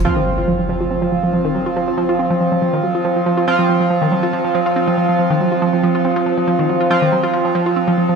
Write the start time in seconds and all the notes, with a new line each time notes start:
0.05 F3 C4 F4, impact
0.16 D#3
0.26 F#3
0.38 F4
0.48 F3
0.59 F3
0.69 F3
0.81 F4
0.91 C4
1.02 F3
1.12 F3
1.23 F3
1.33 F3
1.45 D#3
1.55 F#3
1.66 F4
1.76 F3
1.88 F3
1.98 F3
2.09 F4
2.19 C4
2.30 F3
2.41 F3
2.52 F3
2.62 F3
2.73 D#3
2.83 F#3
2.95 F4
3.05 F3
3.16 F3
3.26 F3
3.37 F4
3.47 F3 C4 F4
3.59 F3
3.69 F3
3.80 F3
3.90 F3
4.02 D#3
4.12 F#3
4.23 F4
4.33 F3
4.45 F3
4.55 F3
4.66 F4
4.76 C4
4.88 F3
4.98 F3
5.09 F3
5.19 F3
5.30 D#3
5.40 F#3
5.52 F4
5.62 F3
5.73 F3
5.83 F3
5.95 F4
6.05 C4
6.16 F3
6.26 F3
6.38 F3
6.48 F3
6.59 D#3
6.69 F#3
6.81 F4
6.90 F3 C4 F4
7.02 D#3
7.12 F#3
7.23 F4
7.33 F3
7.45 F3
7.55 F3
7.66 F4
7.76 C4
7.88 F3
7.98 F3
8.09 F3